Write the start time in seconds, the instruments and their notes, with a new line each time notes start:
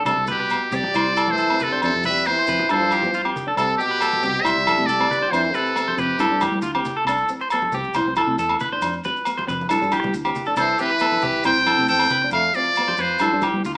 0.05 fingered electric bass C2, trombone C3, nylon-string guitar D4, clean electric guitar A4, muted trumpet A4, low conga, low agogo, maracas
0.17 fingered electric bass C2
0.27 trombone B2, muted trumpet G4, clean electric guitar B4, low conga, maracas
0.40 clean electric guitar B4
0.50 nylon-string guitar B3, low agogo, maracas
0.71 fingered electric bass C2, trombone G3, nylon-string guitar C4, clean electric guitar G4, muted trumpet D5, low conga, maracas
0.84 high conga
0.94 fingered electric bass C2, nylon-string guitar E4, clean electric guitar C5, low agogo, maracas
1.07 nylon-string guitar C4
1.16 clean electric guitar A4, low agogo, maracas
1.28 trombone E3, nylon-string guitar A3, muted trumpet C5, high conga
1.38 clean electric guitar A4, maracas
1.50 nylon-string guitar C4, low agogo
1.59 muted trumpet A4, clean electric guitar B4, low conga, maracas
1.64 trombone C3
1.72 nylon-string guitar D4, clean electric guitar C5
1.82 fingered electric bass F2, nylon-string guitar D4, muted trumpet A4, low agogo, maracas
1.86 trombone C3
1.94 fingered electric bass F2
2.04 nylon-string guitar C4, clean electric guitar B4, muted trumpet E5, high conga, low conga, maracas
2.10 trombone G3
2.15 maracas
2.25 nylon-string guitar B3, muted trumpet C5, low agogo, maracas
2.29 trombone E3
2.39 clean electric guitar C5
2.47 fingered electric bass F2, nylon-string guitar C4, clean electric guitar B4, low conga, maracas
2.59 high conga
2.69 fingered electric bass G2, nylon-string guitar E4, clean electric guitar A4, muted trumpet C5, high conga, low agogo, maracas
2.74 trombone F3
2.81 nylon-string guitar D4, high conga
2.91 clean electric guitar G4, low agogo, maracas
3.02 nylon-string guitar B3, high conga, maracas
3.14 clean electric guitar F4, maracas
3.25 nylon-string guitar C4, clean electric guitar G4, low agogo
3.36 low conga, maracas
3.47 nylon-string guitar D4, clean electric guitar A4
3.56 fingered electric bass C2, trombone C3, muted trumpet A4, clean electric guitar A4, muted nylon-string guitar stroke, low agogo, maracas
3.77 trombone B2, nylon-string guitar C4, muted trumpet G4, clean electric guitar G4, maracas
3.91 clean electric guitar B4, maracas
4.01 nylon-string guitar B3, clean electric guitar A4, low agogo, maracas
4.13 high conga
4.23 fingered electric bass C2, nylon-string guitar C4, clean electric guitar G4, low conga, maracas
4.36 maracas
4.42 fingered electric bass C2, trombone G3, nylon-string guitar E4, clean electric guitar C5, muted trumpet E5, low agogo
4.46 maracas
4.54 fingered electric bass C2, nylon-string guitar C4
4.67 clean electric guitar A4, high conga, low agogo, maracas
4.78 fingered electric bass C3, nylon-string guitar A3
4.86 fingered electric bass C2, trombone G3, clean electric guitar A4, muted trumpet D5, maracas
5.00 nylon-string guitar C4, low agogo
5.11 clean electric guitar B4, low conga, maracas
5.21 nylon-string guitar D4, clean electric guitar C5
5.31 fingered electric bass F2, trombone E3, nylon-string guitar D4, muted trumpet C5, low agogo, maracas
5.44 maracas
5.53 trombone C3, nylon-string guitar C4, muted trumpet A4, clean electric guitar B4, maracas
5.66 maracas
5.76 nylon-string guitar B3, low agogo, maracas
5.88 clean electric guitar C5, high conga
5.97 fingered electric bass F2, trombone C3, nylon-string guitar C4, muted trumpet G4, clean electric guitar B4, low conga, maracas
6.10 maracas
6.19 fingered electric bass G2, nylon-string guitar E4, clean electric guitar A4, low agogo, maracas
6.29 fingered electric bass G2, nylon-string guitar D4
6.41 clean electric guitar G4, high conga, low agogo, maracas
6.51 fingered electric bass G3, nylon-string guitar B3
6.62 fingered electric bass D2, clean electric guitar F4, maracas
6.75 nylon-string guitar C4, clean electric guitar G4, low agogo
6.85 low conga, maracas
6.97 clean electric guitar A4
7.05 fingered electric bass C2, clean electric guitar A4, low agogo, maracas
7.09 nylon-string guitar D4
7.18 maracas
7.29 nylon-string guitar C4, maracas
7.40 clean electric guitar C5, maracas
7.50 nylon-string guitar B3, clean electric guitar A4, low agogo, maracas
7.62 high conga
7.72 fingered electric bass C2, nylon-string guitar C4, clean electric guitar G4, low conga, maracas
7.84 maracas
7.94 fingered electric bass C2, nylon-string guitar E4, clean electric guitar C5, low agogo, maracas
8.05 fingered electric bass C2, nylon-string guitar C4
8.16 clean electric guitar A4, high conga, low agogo, maracas
8.27 fingered electric bass C3, nylon-string guitar A3
8.38 fingered electric bass E2, clean electric guitar A4, maracas
8.49 nylon-string guitar C4, low agogo
8.60 clean electric guitar B4, low conga, maracas
8.72 nylon-string guitar D4, clean electric guitar C5
8.82 fingered electric bass F2, nylon-string guitar D4, low agogo, maracas
8.93 maracas
9.04 nylon-string guitar C4, clean electric guitar B4, high conga, maracas
9.16 maracas
9.25 nylon-string guitar B3, low agogo, maracas
9.38 clean electric guitar C5, high conga
9.47 fingered electric bass F2, nylon-string guitar C4, clean electric guitar B4, low conga, maracas
9.61 high conga, maracas
9.69 fingered electric bass G2, nylon-string guitar E4, clean electric guitar A4, low agogo, maracas
9.81 fingered electric bass G2, nylon-string guitar D4, high conga, maracas
9.92 clean electric guitar G4, high conga, low agogo, maracas
10.03 fingered electric bass G3, nylon-string guitar B3, low conga, maracas
10.14 fingered electric bass D2, maracas
10.25 nylon-string guitar C4, clean electric guitar G4, low agogo, maracas
10.35 low conga, maracas
10.46 nylon-string guitar D4, clean electric guitar A4, maracas
10.56 fingered electric bass C2, trombone E3, nylon-string guitar D4, clean electric guitar A4, muted trumpet C5, low agogo, maracas
10.78 trombone E3, nylon-string guitar C4, clean electric guitar G4, muted trumpet B4, maracas
10.89 clean electric guitar B4, maracas
10.99 nylon-string guitar B3, clean electric guitar A4, low agogo, maracas
11.12 high conga
11.22 fingered electric bass C2, nylon-string guitar C4, clean electric guitar G4, low conga, maracas
11.32 maracas
11.44 fingered electric bass C2, trombone C4, nylon-string guitar E4, clean electric guitar C5, muted trumpet G5, low agogo, maracas
11.56 fingered electric bass C2
11.66 clean electric guitar A4, high conga, low agogo, maracas
11.78 fingered electric bass C3, nylon-string guitar A3
11.88 fingered electric bass E2, trombone C4, clean electric guitar A4, muted trumpet G5, maracas
11.99 nylon-string guitar C4, low agogo
12.10 clean electric guitar B4, low conga, maracas
12.22 nylon-string guitar D4, muted clean electric guitar stroke
12.31 fingered electric bass F2, trombone A3, nylon-string guitar D4, muted trumpet F5, low agogo, maracas
12.54 trombone F3, nylon-string guitar C4, muted trumpet D5, maracas
12.64 maracas
12.75 nylon-string guitar B3, low agogo, maracas
12.88 clean electric guitar C5, high conga
12.97 fingered electric bass F2, trombone F3, nylon-string guitar C4, clean electric guitar B4, muted trumpet C5, maracas
13.19 fingered electric bass G2, nylon-string guitar E4, clean electric guitar A4, low agogo, maracas
13.32 fingered electric bass G2, nylon-string guitar D4
13.41 clean electric guitar G4, high conga, low agogo, maracas
13.54 fingered electric bass G3, nylon-string guitar B3
13.65 fingered electric bass D2, clean electric guitar F4, maracas